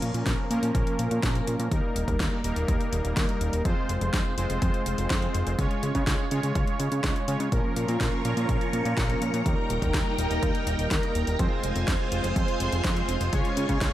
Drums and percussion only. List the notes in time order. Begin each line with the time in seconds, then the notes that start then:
0.02 closed hi-hat
0.14 closed hi-hat
0.26 kick, snare, closed hi-hat
0.51 closed hi-hat
0.63 closed hi-hat
0.75 kick, closed hi-hat
0.87 closed hi-hat
0.99 closed hi-hat
1.11 closed hi-hat
1.23 kick, snare, closed hi-hat
1.35 closed hi-hat
1.47 closed hi-hat
1.60 closed hi-hat
1.72 kick, closed hi-hat
1.96 closed hi-hat
2.08 kick, closed hi-hat
2.20 kick, snare, closed hi-hat
2.44 closed hi-hat
2.56 closed hi-hat
2.68 kick, closed hi-hat
2.81 closed hi-hat
2.93 closed hi-hat
3.05 closed hi-hat
3.17 kick, snare, closed hi-hat
3.29 closed hi-hat
3.41 closed hi-hat
3.53 closed hi-hat
3.65 kick, closed hi-hat
3.89 closed hi-hat
4.01 closed hi-hat
4.14 kick, snare, closed hi-hat
4.38 closed hi-hat
4.50 closed hi-hat
4.62 kick, closed hi-hat
4.74 closed hi-hat
4.86 closed hi-hat
4.98 closed hi-hat
5.10 kick, snare, closed hi-hat
5.22 closed hi-hat
5.35 closed hi-hat
5.47 closed hi-hat
5.59 kick, closed hi-hat
5.71 closed hi-hat
5.83 closed hi-hat
5.95 kick, closed hi-hat
6.07 kick, snare, closed hi-hat
6.31 closed hi-hat
6.43 closed hi-hat
6.55 kick, closed hi-hat
6.67 closed hi-hat
6.80 closed hi-hat
6.92 closed hi-hat
7.04 kick, snare, closed hi-hat
7.16 closed hi-hat
7.28 closed hi-hat
7.40 closed hi-hat
7.52 kick, closed hi-hat
7.76 closed hi-hat
7.88 closed hi-hat
8.01 kick, snare, closed hi-hat
8.25 closed hi-hat
8.37 closed hi-hat
8.49 kick, closed hi-hat
8.61 closed hi-hat
8.73 closed hi-hat
8.85 closed hi-hat
8.97 kick, snare, closed hi-hat
9.10 closed hi-hat
9.22 closed hi-hat
9.34 closed hi-hat
9.46 kick, closed hi-hat
9.70 closed hi-hat
9.82 kick, closed hi-hat
9.94 kick, snare, closed hi-hat
10.18 closed hi-hat
10.31 closed hi-hat
10.43 kick, closed hi-hat
10.55 closed hi-hat
10.67 closed hi-hat
10.79 closed hi-hat
10.91 kick, snare, closed hi-hat
11.03 closed hi-hat
11.15 closed hi-hat
11.27 closed hi-hat
11.39 kick, closed hi-hat
11.64 closed hi-hat
11.76 closed hi-hat
11.88 kick, snare, closed hi-hat
12.12 closed hi-hat
12.24 closed hi-hat
12.36 kick, closed hi-hat
12.48 closed hi-hat
12.60 closed hi-hat
12.72 closed hi-hat
12.84 kick, snare, closed hi-hat
12.97 closed hi-hat
13.09 closed hi-hat
13.21 closed hi-hat
13.33 kick, closed hi-hat
13.45 closed hi-hat
13.57 closed hi-hat
13.69 kick, closed hi-hat
13.81 kick, snare, closed hi-hat